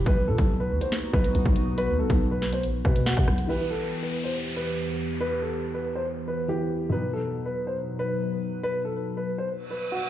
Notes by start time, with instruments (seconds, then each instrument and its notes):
0.06 808-style bass B1, analog synth pad B3 D#4 F#4, upright piano B4, kick, closed hi-hat
0.28 808-style bass B2, upright piano A4
0.38 808-style bass B1, kick, closed hi-hat
0.60 upright piano B4
0.71 808-style bass D#2
0.81 upright piano C5, closed hi-hat
0.92 snare, closed hi-hat
1.13 808-style bass B1, upright piano B4, kick
1.24 closed hi-hat
1.35 808-style bass B1, closed hi-hat
1.46 808-style bass B1, kick
1.56 closed hi-hat
1.78 upright piano B4, closed hi-hat
1.88 808-style bass D#2
1.99 808-style bass B1, upright piano A4
2.10 808-style bass B1, kick, closed hi-hat
2.31 upright piano B4
2.42 snare
2.53 upright piano C5, closed hi-hat
2.63 808-style bass A1, closed hi-hat
2.74 808-style bass B1
2.85 808-style bass B2, upright piano B4, kick
2.96 closed hi-hat
3.06 upright piano F#4, snare
3.17 808-style bass B2, kick
3.28 808-style bass B1, cross-stick
3.38 closed hi-hat
3.47 analog synth pad E2 E3 B3 G4, felt piano E3 E4 G4, upright piano B4, downlifter
3.52 felt piano B4
3.71 upright piano A4
4.03 upright piano B4
4.24 upright piano C5
4.56 upright piano B4
5.21 upright piano B4
5.42 upright piano A4
5.74 upright piano B4
5.95 upright piano C5
6.28 upright piano B4
6.48 felt piano E3 E4 G4 B4, upright piano G4
6.90 felt piano B2 F#3 D#4, analog synth pad B2 F#3 D#4 B4, upright piano B4
6.94 felt piano B4
7.13 upright piano A4
7.46 upright piano B4
7.67 upright piano C5
7.99 upright piano B4
8.63 upright piano B4
8.85 upright piano A4
9.17 upright piano B4
9.38 upright piano C5
9.49 reverse cymbal
9.71 upright piano B4
9.92 upright piano F#4